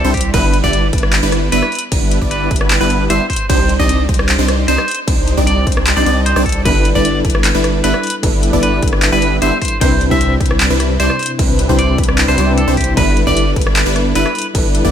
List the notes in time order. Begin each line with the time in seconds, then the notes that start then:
0.04 C2 G3 C4 D4 E4 C5
0.14 G4, kick, closed hi-hat, open hi-hat
0.21 closed hi-hat
0.34 G1 G3 B3 D4 E4 B4, kick, closed hi-hat, crash
0.53 closed hi-hat
0.64 G1 G3 B3 D4 E4 D5, kick
0.73 closed hi-hat
0.93 G1 G3 B3 D4 E4 B4, kick, closed hi-hat
0.98 closed hi-hat
1.03 cross-stick
1.13 clap, closed hi-hat, crash
1.23 G1 G3 B3 D4 E4 B4
1.32 cross-stick, closed hi-hat
1.52 G1 G3 B3 D4 E4 B4 E5, closed hi-hat
1.62 cross-stick
1.72 closed hi-hat, open hi-hat
1.79 closed hi-hat
1.92 G1 G3 B3 D4 E4 B4, kick, closed hi-hat, crash
2.11 closed hi-hat
2.21 G1 G3 B3 D4 E4 D5, kick
2.31 B4, closed hi-hat
2.51 G1 G3 B3 D4 E4 B4, kick, closed hi-hat
2.56 closed hi-hat
2.61 cross-stick
2.70 clap, closed hi-hat, crash
2.81 G1 G3 B3 D4 E4 B4
2.90 closed hi-hat
3.10 G1 G3 B3 D4 E4 C5 E5, closed hi-hat
3.30 C5, kick, closed hi-hat, open hi-hat
3.36 closed hi-hat
3.49 C2 G3 C4 D4 D#4 C5, kick, closed hi-hat, crash
3.69 closed hi-hat
3.79 C2 G3 C4 D4 D#4 D5 D#5, kick
3.89 closed hi-hat
4.09 C2 G3 C4 D4 D#4 C5, kick, closed hi-hat
4.14 closed hi-hat
4.19 cross-stick
4.29 clap, closed hi-hat, crash
4.39 C2 G3 C4 D4 D#4 C5
4.48 cross-stick, closed hi-hat
4.68 C2 G3 C4 D4 D#4 C5 D#5, closed hi-hat
4.78 cross-stick
4.88 closed hi-hat, open hi-hat
4.95 closed hi-hat
5.07 C2 G3 C4 D4 D#4 C5, kick, closed hi-hat, crash
5.28 closed hi-hat
5.37 C2 G3 C4 D4 D#4 D5, kick
5.47 D5, closed hi-hat
5.67 C2 G3 C4 D4 D#4 C5, kick, closed hi-hat
5.72 closed hi-hat
5.77 cross-stick
5.87 clap, closed hi-hat, crash
5.96 C2 G3 C4 D4 D#4 C5 D5
6.06 C2 G3 C4 D4 D#4 D#5, closed hi-hat
6.26 C5, closed hi-hat
6.36 C2 G3 C4 D4 D#4 D5, cross-stick
6.46 A4, kick, closed hi-hat, open hi-hat
6.52 closed hi-hat
6.64 G1 G3 B3 D4 E4 A4 B4, kick, closed hi-hat, crash
6.85 closed hi-hat
6.93 G1 G3 B3 D4 E4 A4 D5, kick
6.97 B4
7.05 closed hi-hat
7.25 G1 G3 B3 D4 E4 B4, kick, closed hi-hat
7.30 closed hi-hat
7.35 cross-stick
7.44 clap, closed hi-hat, crash
7.55 G1 G3 B3 D4 E4 B4
7.64 cross-stick, closed hi-hat
7.84 G1 G3 B3 D4 E4 B4 E5, closed hi-hat
7.94 cross-stick
8.03 closed hi-hat, open hi-hat
8.10 closed hi-hat
8.22 G1 G3 B3 D4 E4 A4 B4, kick, closed hi-hat, crash
8.43 closed hi-hat
8.51 G1 G3 B3 D4 E4 A4 B4 D5, kick
8.63 B4, closed hi-hat
8.82 G1 G3 B3 D4 E4 B4, kick, closed hi-hat
8.88 closed hi-hat
8.93 cross-stick
9.02 clap, closed hi-hat, crash
9.12 G1 G3 B3 D4 E4 B4
9.22 closed hi-hat
9.42 G1 G3 B3 D4 E4 C5 E5, closed hi-hat
9.62 C5, kick, closed hi-hat, open hi-hat
9.68 closed hi-hat
9.80 C2 C3 G3 C4 D4 E4 B4 C5, kick, closed hi-hat, crash
10.01 closed hi-hat
10.09 C2 C3 G3 C4 D4 E4 C5 E5, kick
10.13 C5
10.21 closed hi-hat
10.41 C2 G3 C4 D4 E4 B4, kick, closed hi-hat
10.46 closed hi-hat
10.51 cross-stick
10.60 clap, closed hi-hat, crash
10.70 C2 G3 C4 D4 E4 B4
10.80 cross-stick, closed hi-hat
11.00 C2 G3 C4 D4 E4 C5 D5, closed hi-hat
11.10 cross-stick
11.19 closed hi-hat, open hi-hat
11.26 closed hi-hat
11.38 C2 C3 G3 C4 D4 E4 B4, kick, closed hi-hat, crash
11.59 closed hi-hat
11.67 C2 C3 G3 C4 D4 E4 C5, kick
11.71 B4
11.79 D5, closed hi-hat
11.98 C2 G3 C4 D4 E4 B4, kick, closed hi-hat
12.04 closed hi-hat
12.09 cross-stick
12.18 clap, closed hi-hat, crash
12.28 C2 G3 C4 D4 E4 B4 C5
12.38 C2 G3 C4 D4 E4 D5, closed hi-hat
12.46 C3 C4 D4 E4 B4
12.58 A4, closed hi-hat
12.68 C2 G3 C4 D4 E4 C5
12.77 G4, kick, closed hi-hat, open hi-hat
12.84 closed hi-hat
12.96 G1 G3 B3 D4 E4 A4 B4, kick, closed hi-hat, crash
13.17 closed hi-hat
13.25 G1 G3 B3 D4 E4 A4 B4 D5, kick
13.37 closed hi-hat
13.56 G1 G3 B3 D4 E4 B4, kick, closed hi-hat
13.61 closed hi-hat
13.67 cross-stick
13.76 clap, closed hi-hat, crash
13.86 G1 G3 B3 D4 E4 B4
13.96 cross-stick, closed hi-hat
14.15 G1 G3 B3 D4 E4 B4 E5, closed hi-hat
14.26 cross-stick
14.35 closed hi-hat, open hi-hat
14.42 closed hi-hat
14.54 G1 G3 B3 D4 E4 A4 B4, kick, closed hi-hat, crash
14.75 closed hi-hat
14.83 G1 G3 B3 D4 E4 A4 D5, kick
14.87 B4